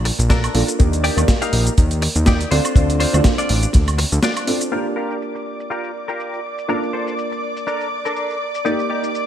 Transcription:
Already playing: analog synth bass A#1, grand piano A#3 D4 F4 D5 A5
0.05 muted clean electric guitar stroke, open hi-hat
0.19 analog synth bass A#1, muted clean electric guitar stroke, closed hi-hat, shaker
0.30 clean electric guitar D4 A4 A#4, kick, snare, closed hi-hat, shaker
0.44 closed hi-hat, high woodblock, shaker
0.54 analog synth bass A#1, grand piano A#3 D4 F4 A4 D5, open hi-hat
0.68 closed hi-hat, shaker
0.79 analog synth bass D#2, grand piano A#3 D4 D#4 G4 D5, kick, closed hi-hat, shaker
0.93 closed hi-hat, shaker
1.04 clean electric guitar D#4 G4 D5, open hi-hat
1.16 analog synth bass D#2, grand piano A#3 D#4 G4 D5, closed hi-hat, high woodblock, shaker
1.28 kick, snare, closed hi-hat, shaker
1.42 clean electric guitar D#4 G4 F5, closed hi-hat, shaker
1.53 analog synth bass A#1, open hi-hat
1.67 closed hi-hat, shaker
1.78 analog synth bass D#2, kick, closed hi-hat, shaker
1.91 closed hi-hat, shaker
2.02 muted clean electric guitar stroke, open hi-hat
2.16 analog synth bass D#2, muted clean electric guitar stroke, closed hi-hat, shaker
2.26 clean electric guitar D#4 G4 D5, kick, snare, closed hi-hat, shaker
2.41 closed hi-hat, shaker
2.51 analog synth bass D2, grand piano C4 D4 F4 A4 D5, clean electric guitar D4 F4 C5, open hi-hat
2.65 high woodblock, shaker
2.76 analog synth bass D2, grand piano C4 D4 F4 A4 D5, kick, closed hi-hat, shaker
2.90 closed hi-hat, shaker
3.00 clean electric guitar D4 F4 C5, open hi-hat
3.13 analog synth bass D2, grand piano C4 D4 F4 A4 D5, high woodblock, shaker
3.24 kick, snare, closed hi-hat, shaker
3.38 clean electric guitar D4 F4 D5, closed hi-hat, shaker
3.49 analog synth bass A1, open hi-hat
3.63 closed hi-hat, shaker
3.73 analog synth bass D2, kick, snare, closed hi-hat, shaker
3.88 closed hi-hat, high woodblock, shaker
3.98 muted clean electric guitar stroke, open hi-hat
4.12 analog synth bass D2, muted clean electric guitar stroke, closed hi-hat, shaker
4.23 clean electric guitar D4 F4 D5, snare, closed hi-hat, shaker
4.37 closed hi-hat, high woodblock, shaker
4.47 grand piano C4 D4 F4 A4 D5, open hi-hat
4.61 closed hi-hat, shaker
4.71 grand piano A#3 D4 F4 G4 D5, clean electric guitar F4 G4 A#4, analog synth pad D5 D6, shaker
4.86 shaker
4.96 clean electric guitar F4 G4 A#4
5.11 shaker
5.22 shaker
5.35 muted clean electric guitar stroke, shaker
5.60 shaker
5.70 clean electric guitar F4 G4 A#4, shaker
5.84 shaker
6.08 clean electric guitar F4 G4 A#4, shaker
6.20 shaker
6.33 shaker
6.58 shaker
6.68 grand piano A#3 D4 F4 D5 A5, clean electric guitar D4 A4 A#4, shaker
6.83 shaker
6.93 clean electric guitar D4 A4 C5
7.08 shaker
7.18 shaker
7.32 muted clean electric guitar stroke, shaker
7.57 shaker
7.67 clean electric guitar D4 A4 A#4, shaker
7.81 shaker
8.05 clean electric guitar D4 A4 A#4, shaker
8.16 shaker
8.30 shaker
8.55 shaker
8.65 grand piano A#3 D#4 G4 D5, clean electric guitar D#4 G4 D5, shaker
8.79 shaker
8.90 clean electric guitar D#4 G4 D5
9.04 shaker
9.15 shaker

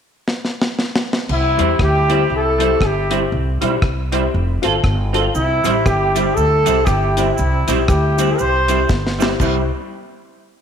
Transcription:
0.28 snare
0.45 snare
0.62 snare
0.79 snare
0.96 snare
1.13 snare
1.29 upright bass C2, horn section C4 E4, crash
1.57 upright bass E2, clean electric guitar G3 C4 E4, upright piano E4 G4 C5, closed hi-hat
1.79 upright bass D2, horn section E4 G4, kick, cross-stick
2.09 clean electric guitar G3 C4 E4, upright piano E4 G4 C5, closed hi-hat
2.30 upright bass C2, horn section E4
2.35 horn section A4
2.58 clean electric guitar G3 C4 E4, upright piano E4 G4 C5, closed hi-hat
2.81 upright bass G1, horn section E4 G4, kick, cross-stick
3.10 clean electric guitar G3 C4 E4, upright piano E4 G4 C5, closed hi-hat
3.32 upright bass C2
3.61 upright bass B1, clean electric guitar G3 C4 E4, upright piano E4 G4 C5, closed hi-hat
3.82 upright bass C2, kick, cross-stick
4.12 clean electric guitar G3 C4 E4, upright piano E4 G4 C5, closed hi-hat
4.34 upright bass F1
4.62 upright bass G1, clean electric guitar C4 F4 A4, upright piano F4 A4 C5, closed hi-hat
4.84 upright bass G1, kick, cross-stick
5.13 clean electric guitar C4 F4 A4, upright piano F4 A4 C5, closed hi-hat
5.33 upright bass C2, horn section C4 E4, cabasa
5.64 upright bass A1, clean electric guitar G3 C4 E4, upright piano E4 G4 C5, closed hi-hat, cabasa
5.84 upright bass G1, horn section E4 G4, kick, cross-stick, cabasa
6.15 clean electric guitar G3 C4 E4, upright piano E4 G4 C5, closed hi-hat, cabasa
6.33 horn section E4 A4
6.37 upright bass D2, cabasa
6.65 upright bass C2, clean electric guitar G3 C4 E4, upright piano E4 G4 C5, closed hi-hat, cabasa
6.83 upright bass G1, horn section E4 G4, kick, cross-stick, cabasa
7.17 clean electric guitar G3 C4 E4, upright piano E4 G4 C5, closed hi-hat, cabasa
7.34 horn section C4 E4, cabasa
7.39 upright bass C2
7.67 upright bass B1, clean electric guitar G3 C4 E4, upright piano E4 G4 C5, closed hi-hat, cabasa
7.87 upright bass D2, horn section E4 G4, kick, cross-stick, cabasa
8.17 clean electric guitar G3 C4 E4, upright piano E4 G4 C5, closed hi-hat, cabasa
8.38 upright bass C2, horn section G4 C5, cabasa
8.68 clean electric guitar G3 C4 E4, upright piano E4 G4 C5, closed hi-hat, cabasa
8.89 upright bass G1, kick, snare, cabasa
9.07 snare
9.19 clean electric guitar G3 C4 E4, upright piano E4 G4 C5, snare, cabasa
9.39 upright bass C2, clean electric guitar G3 C4 E4, upright piano E4 G4 C5, kick, crash, cabasa

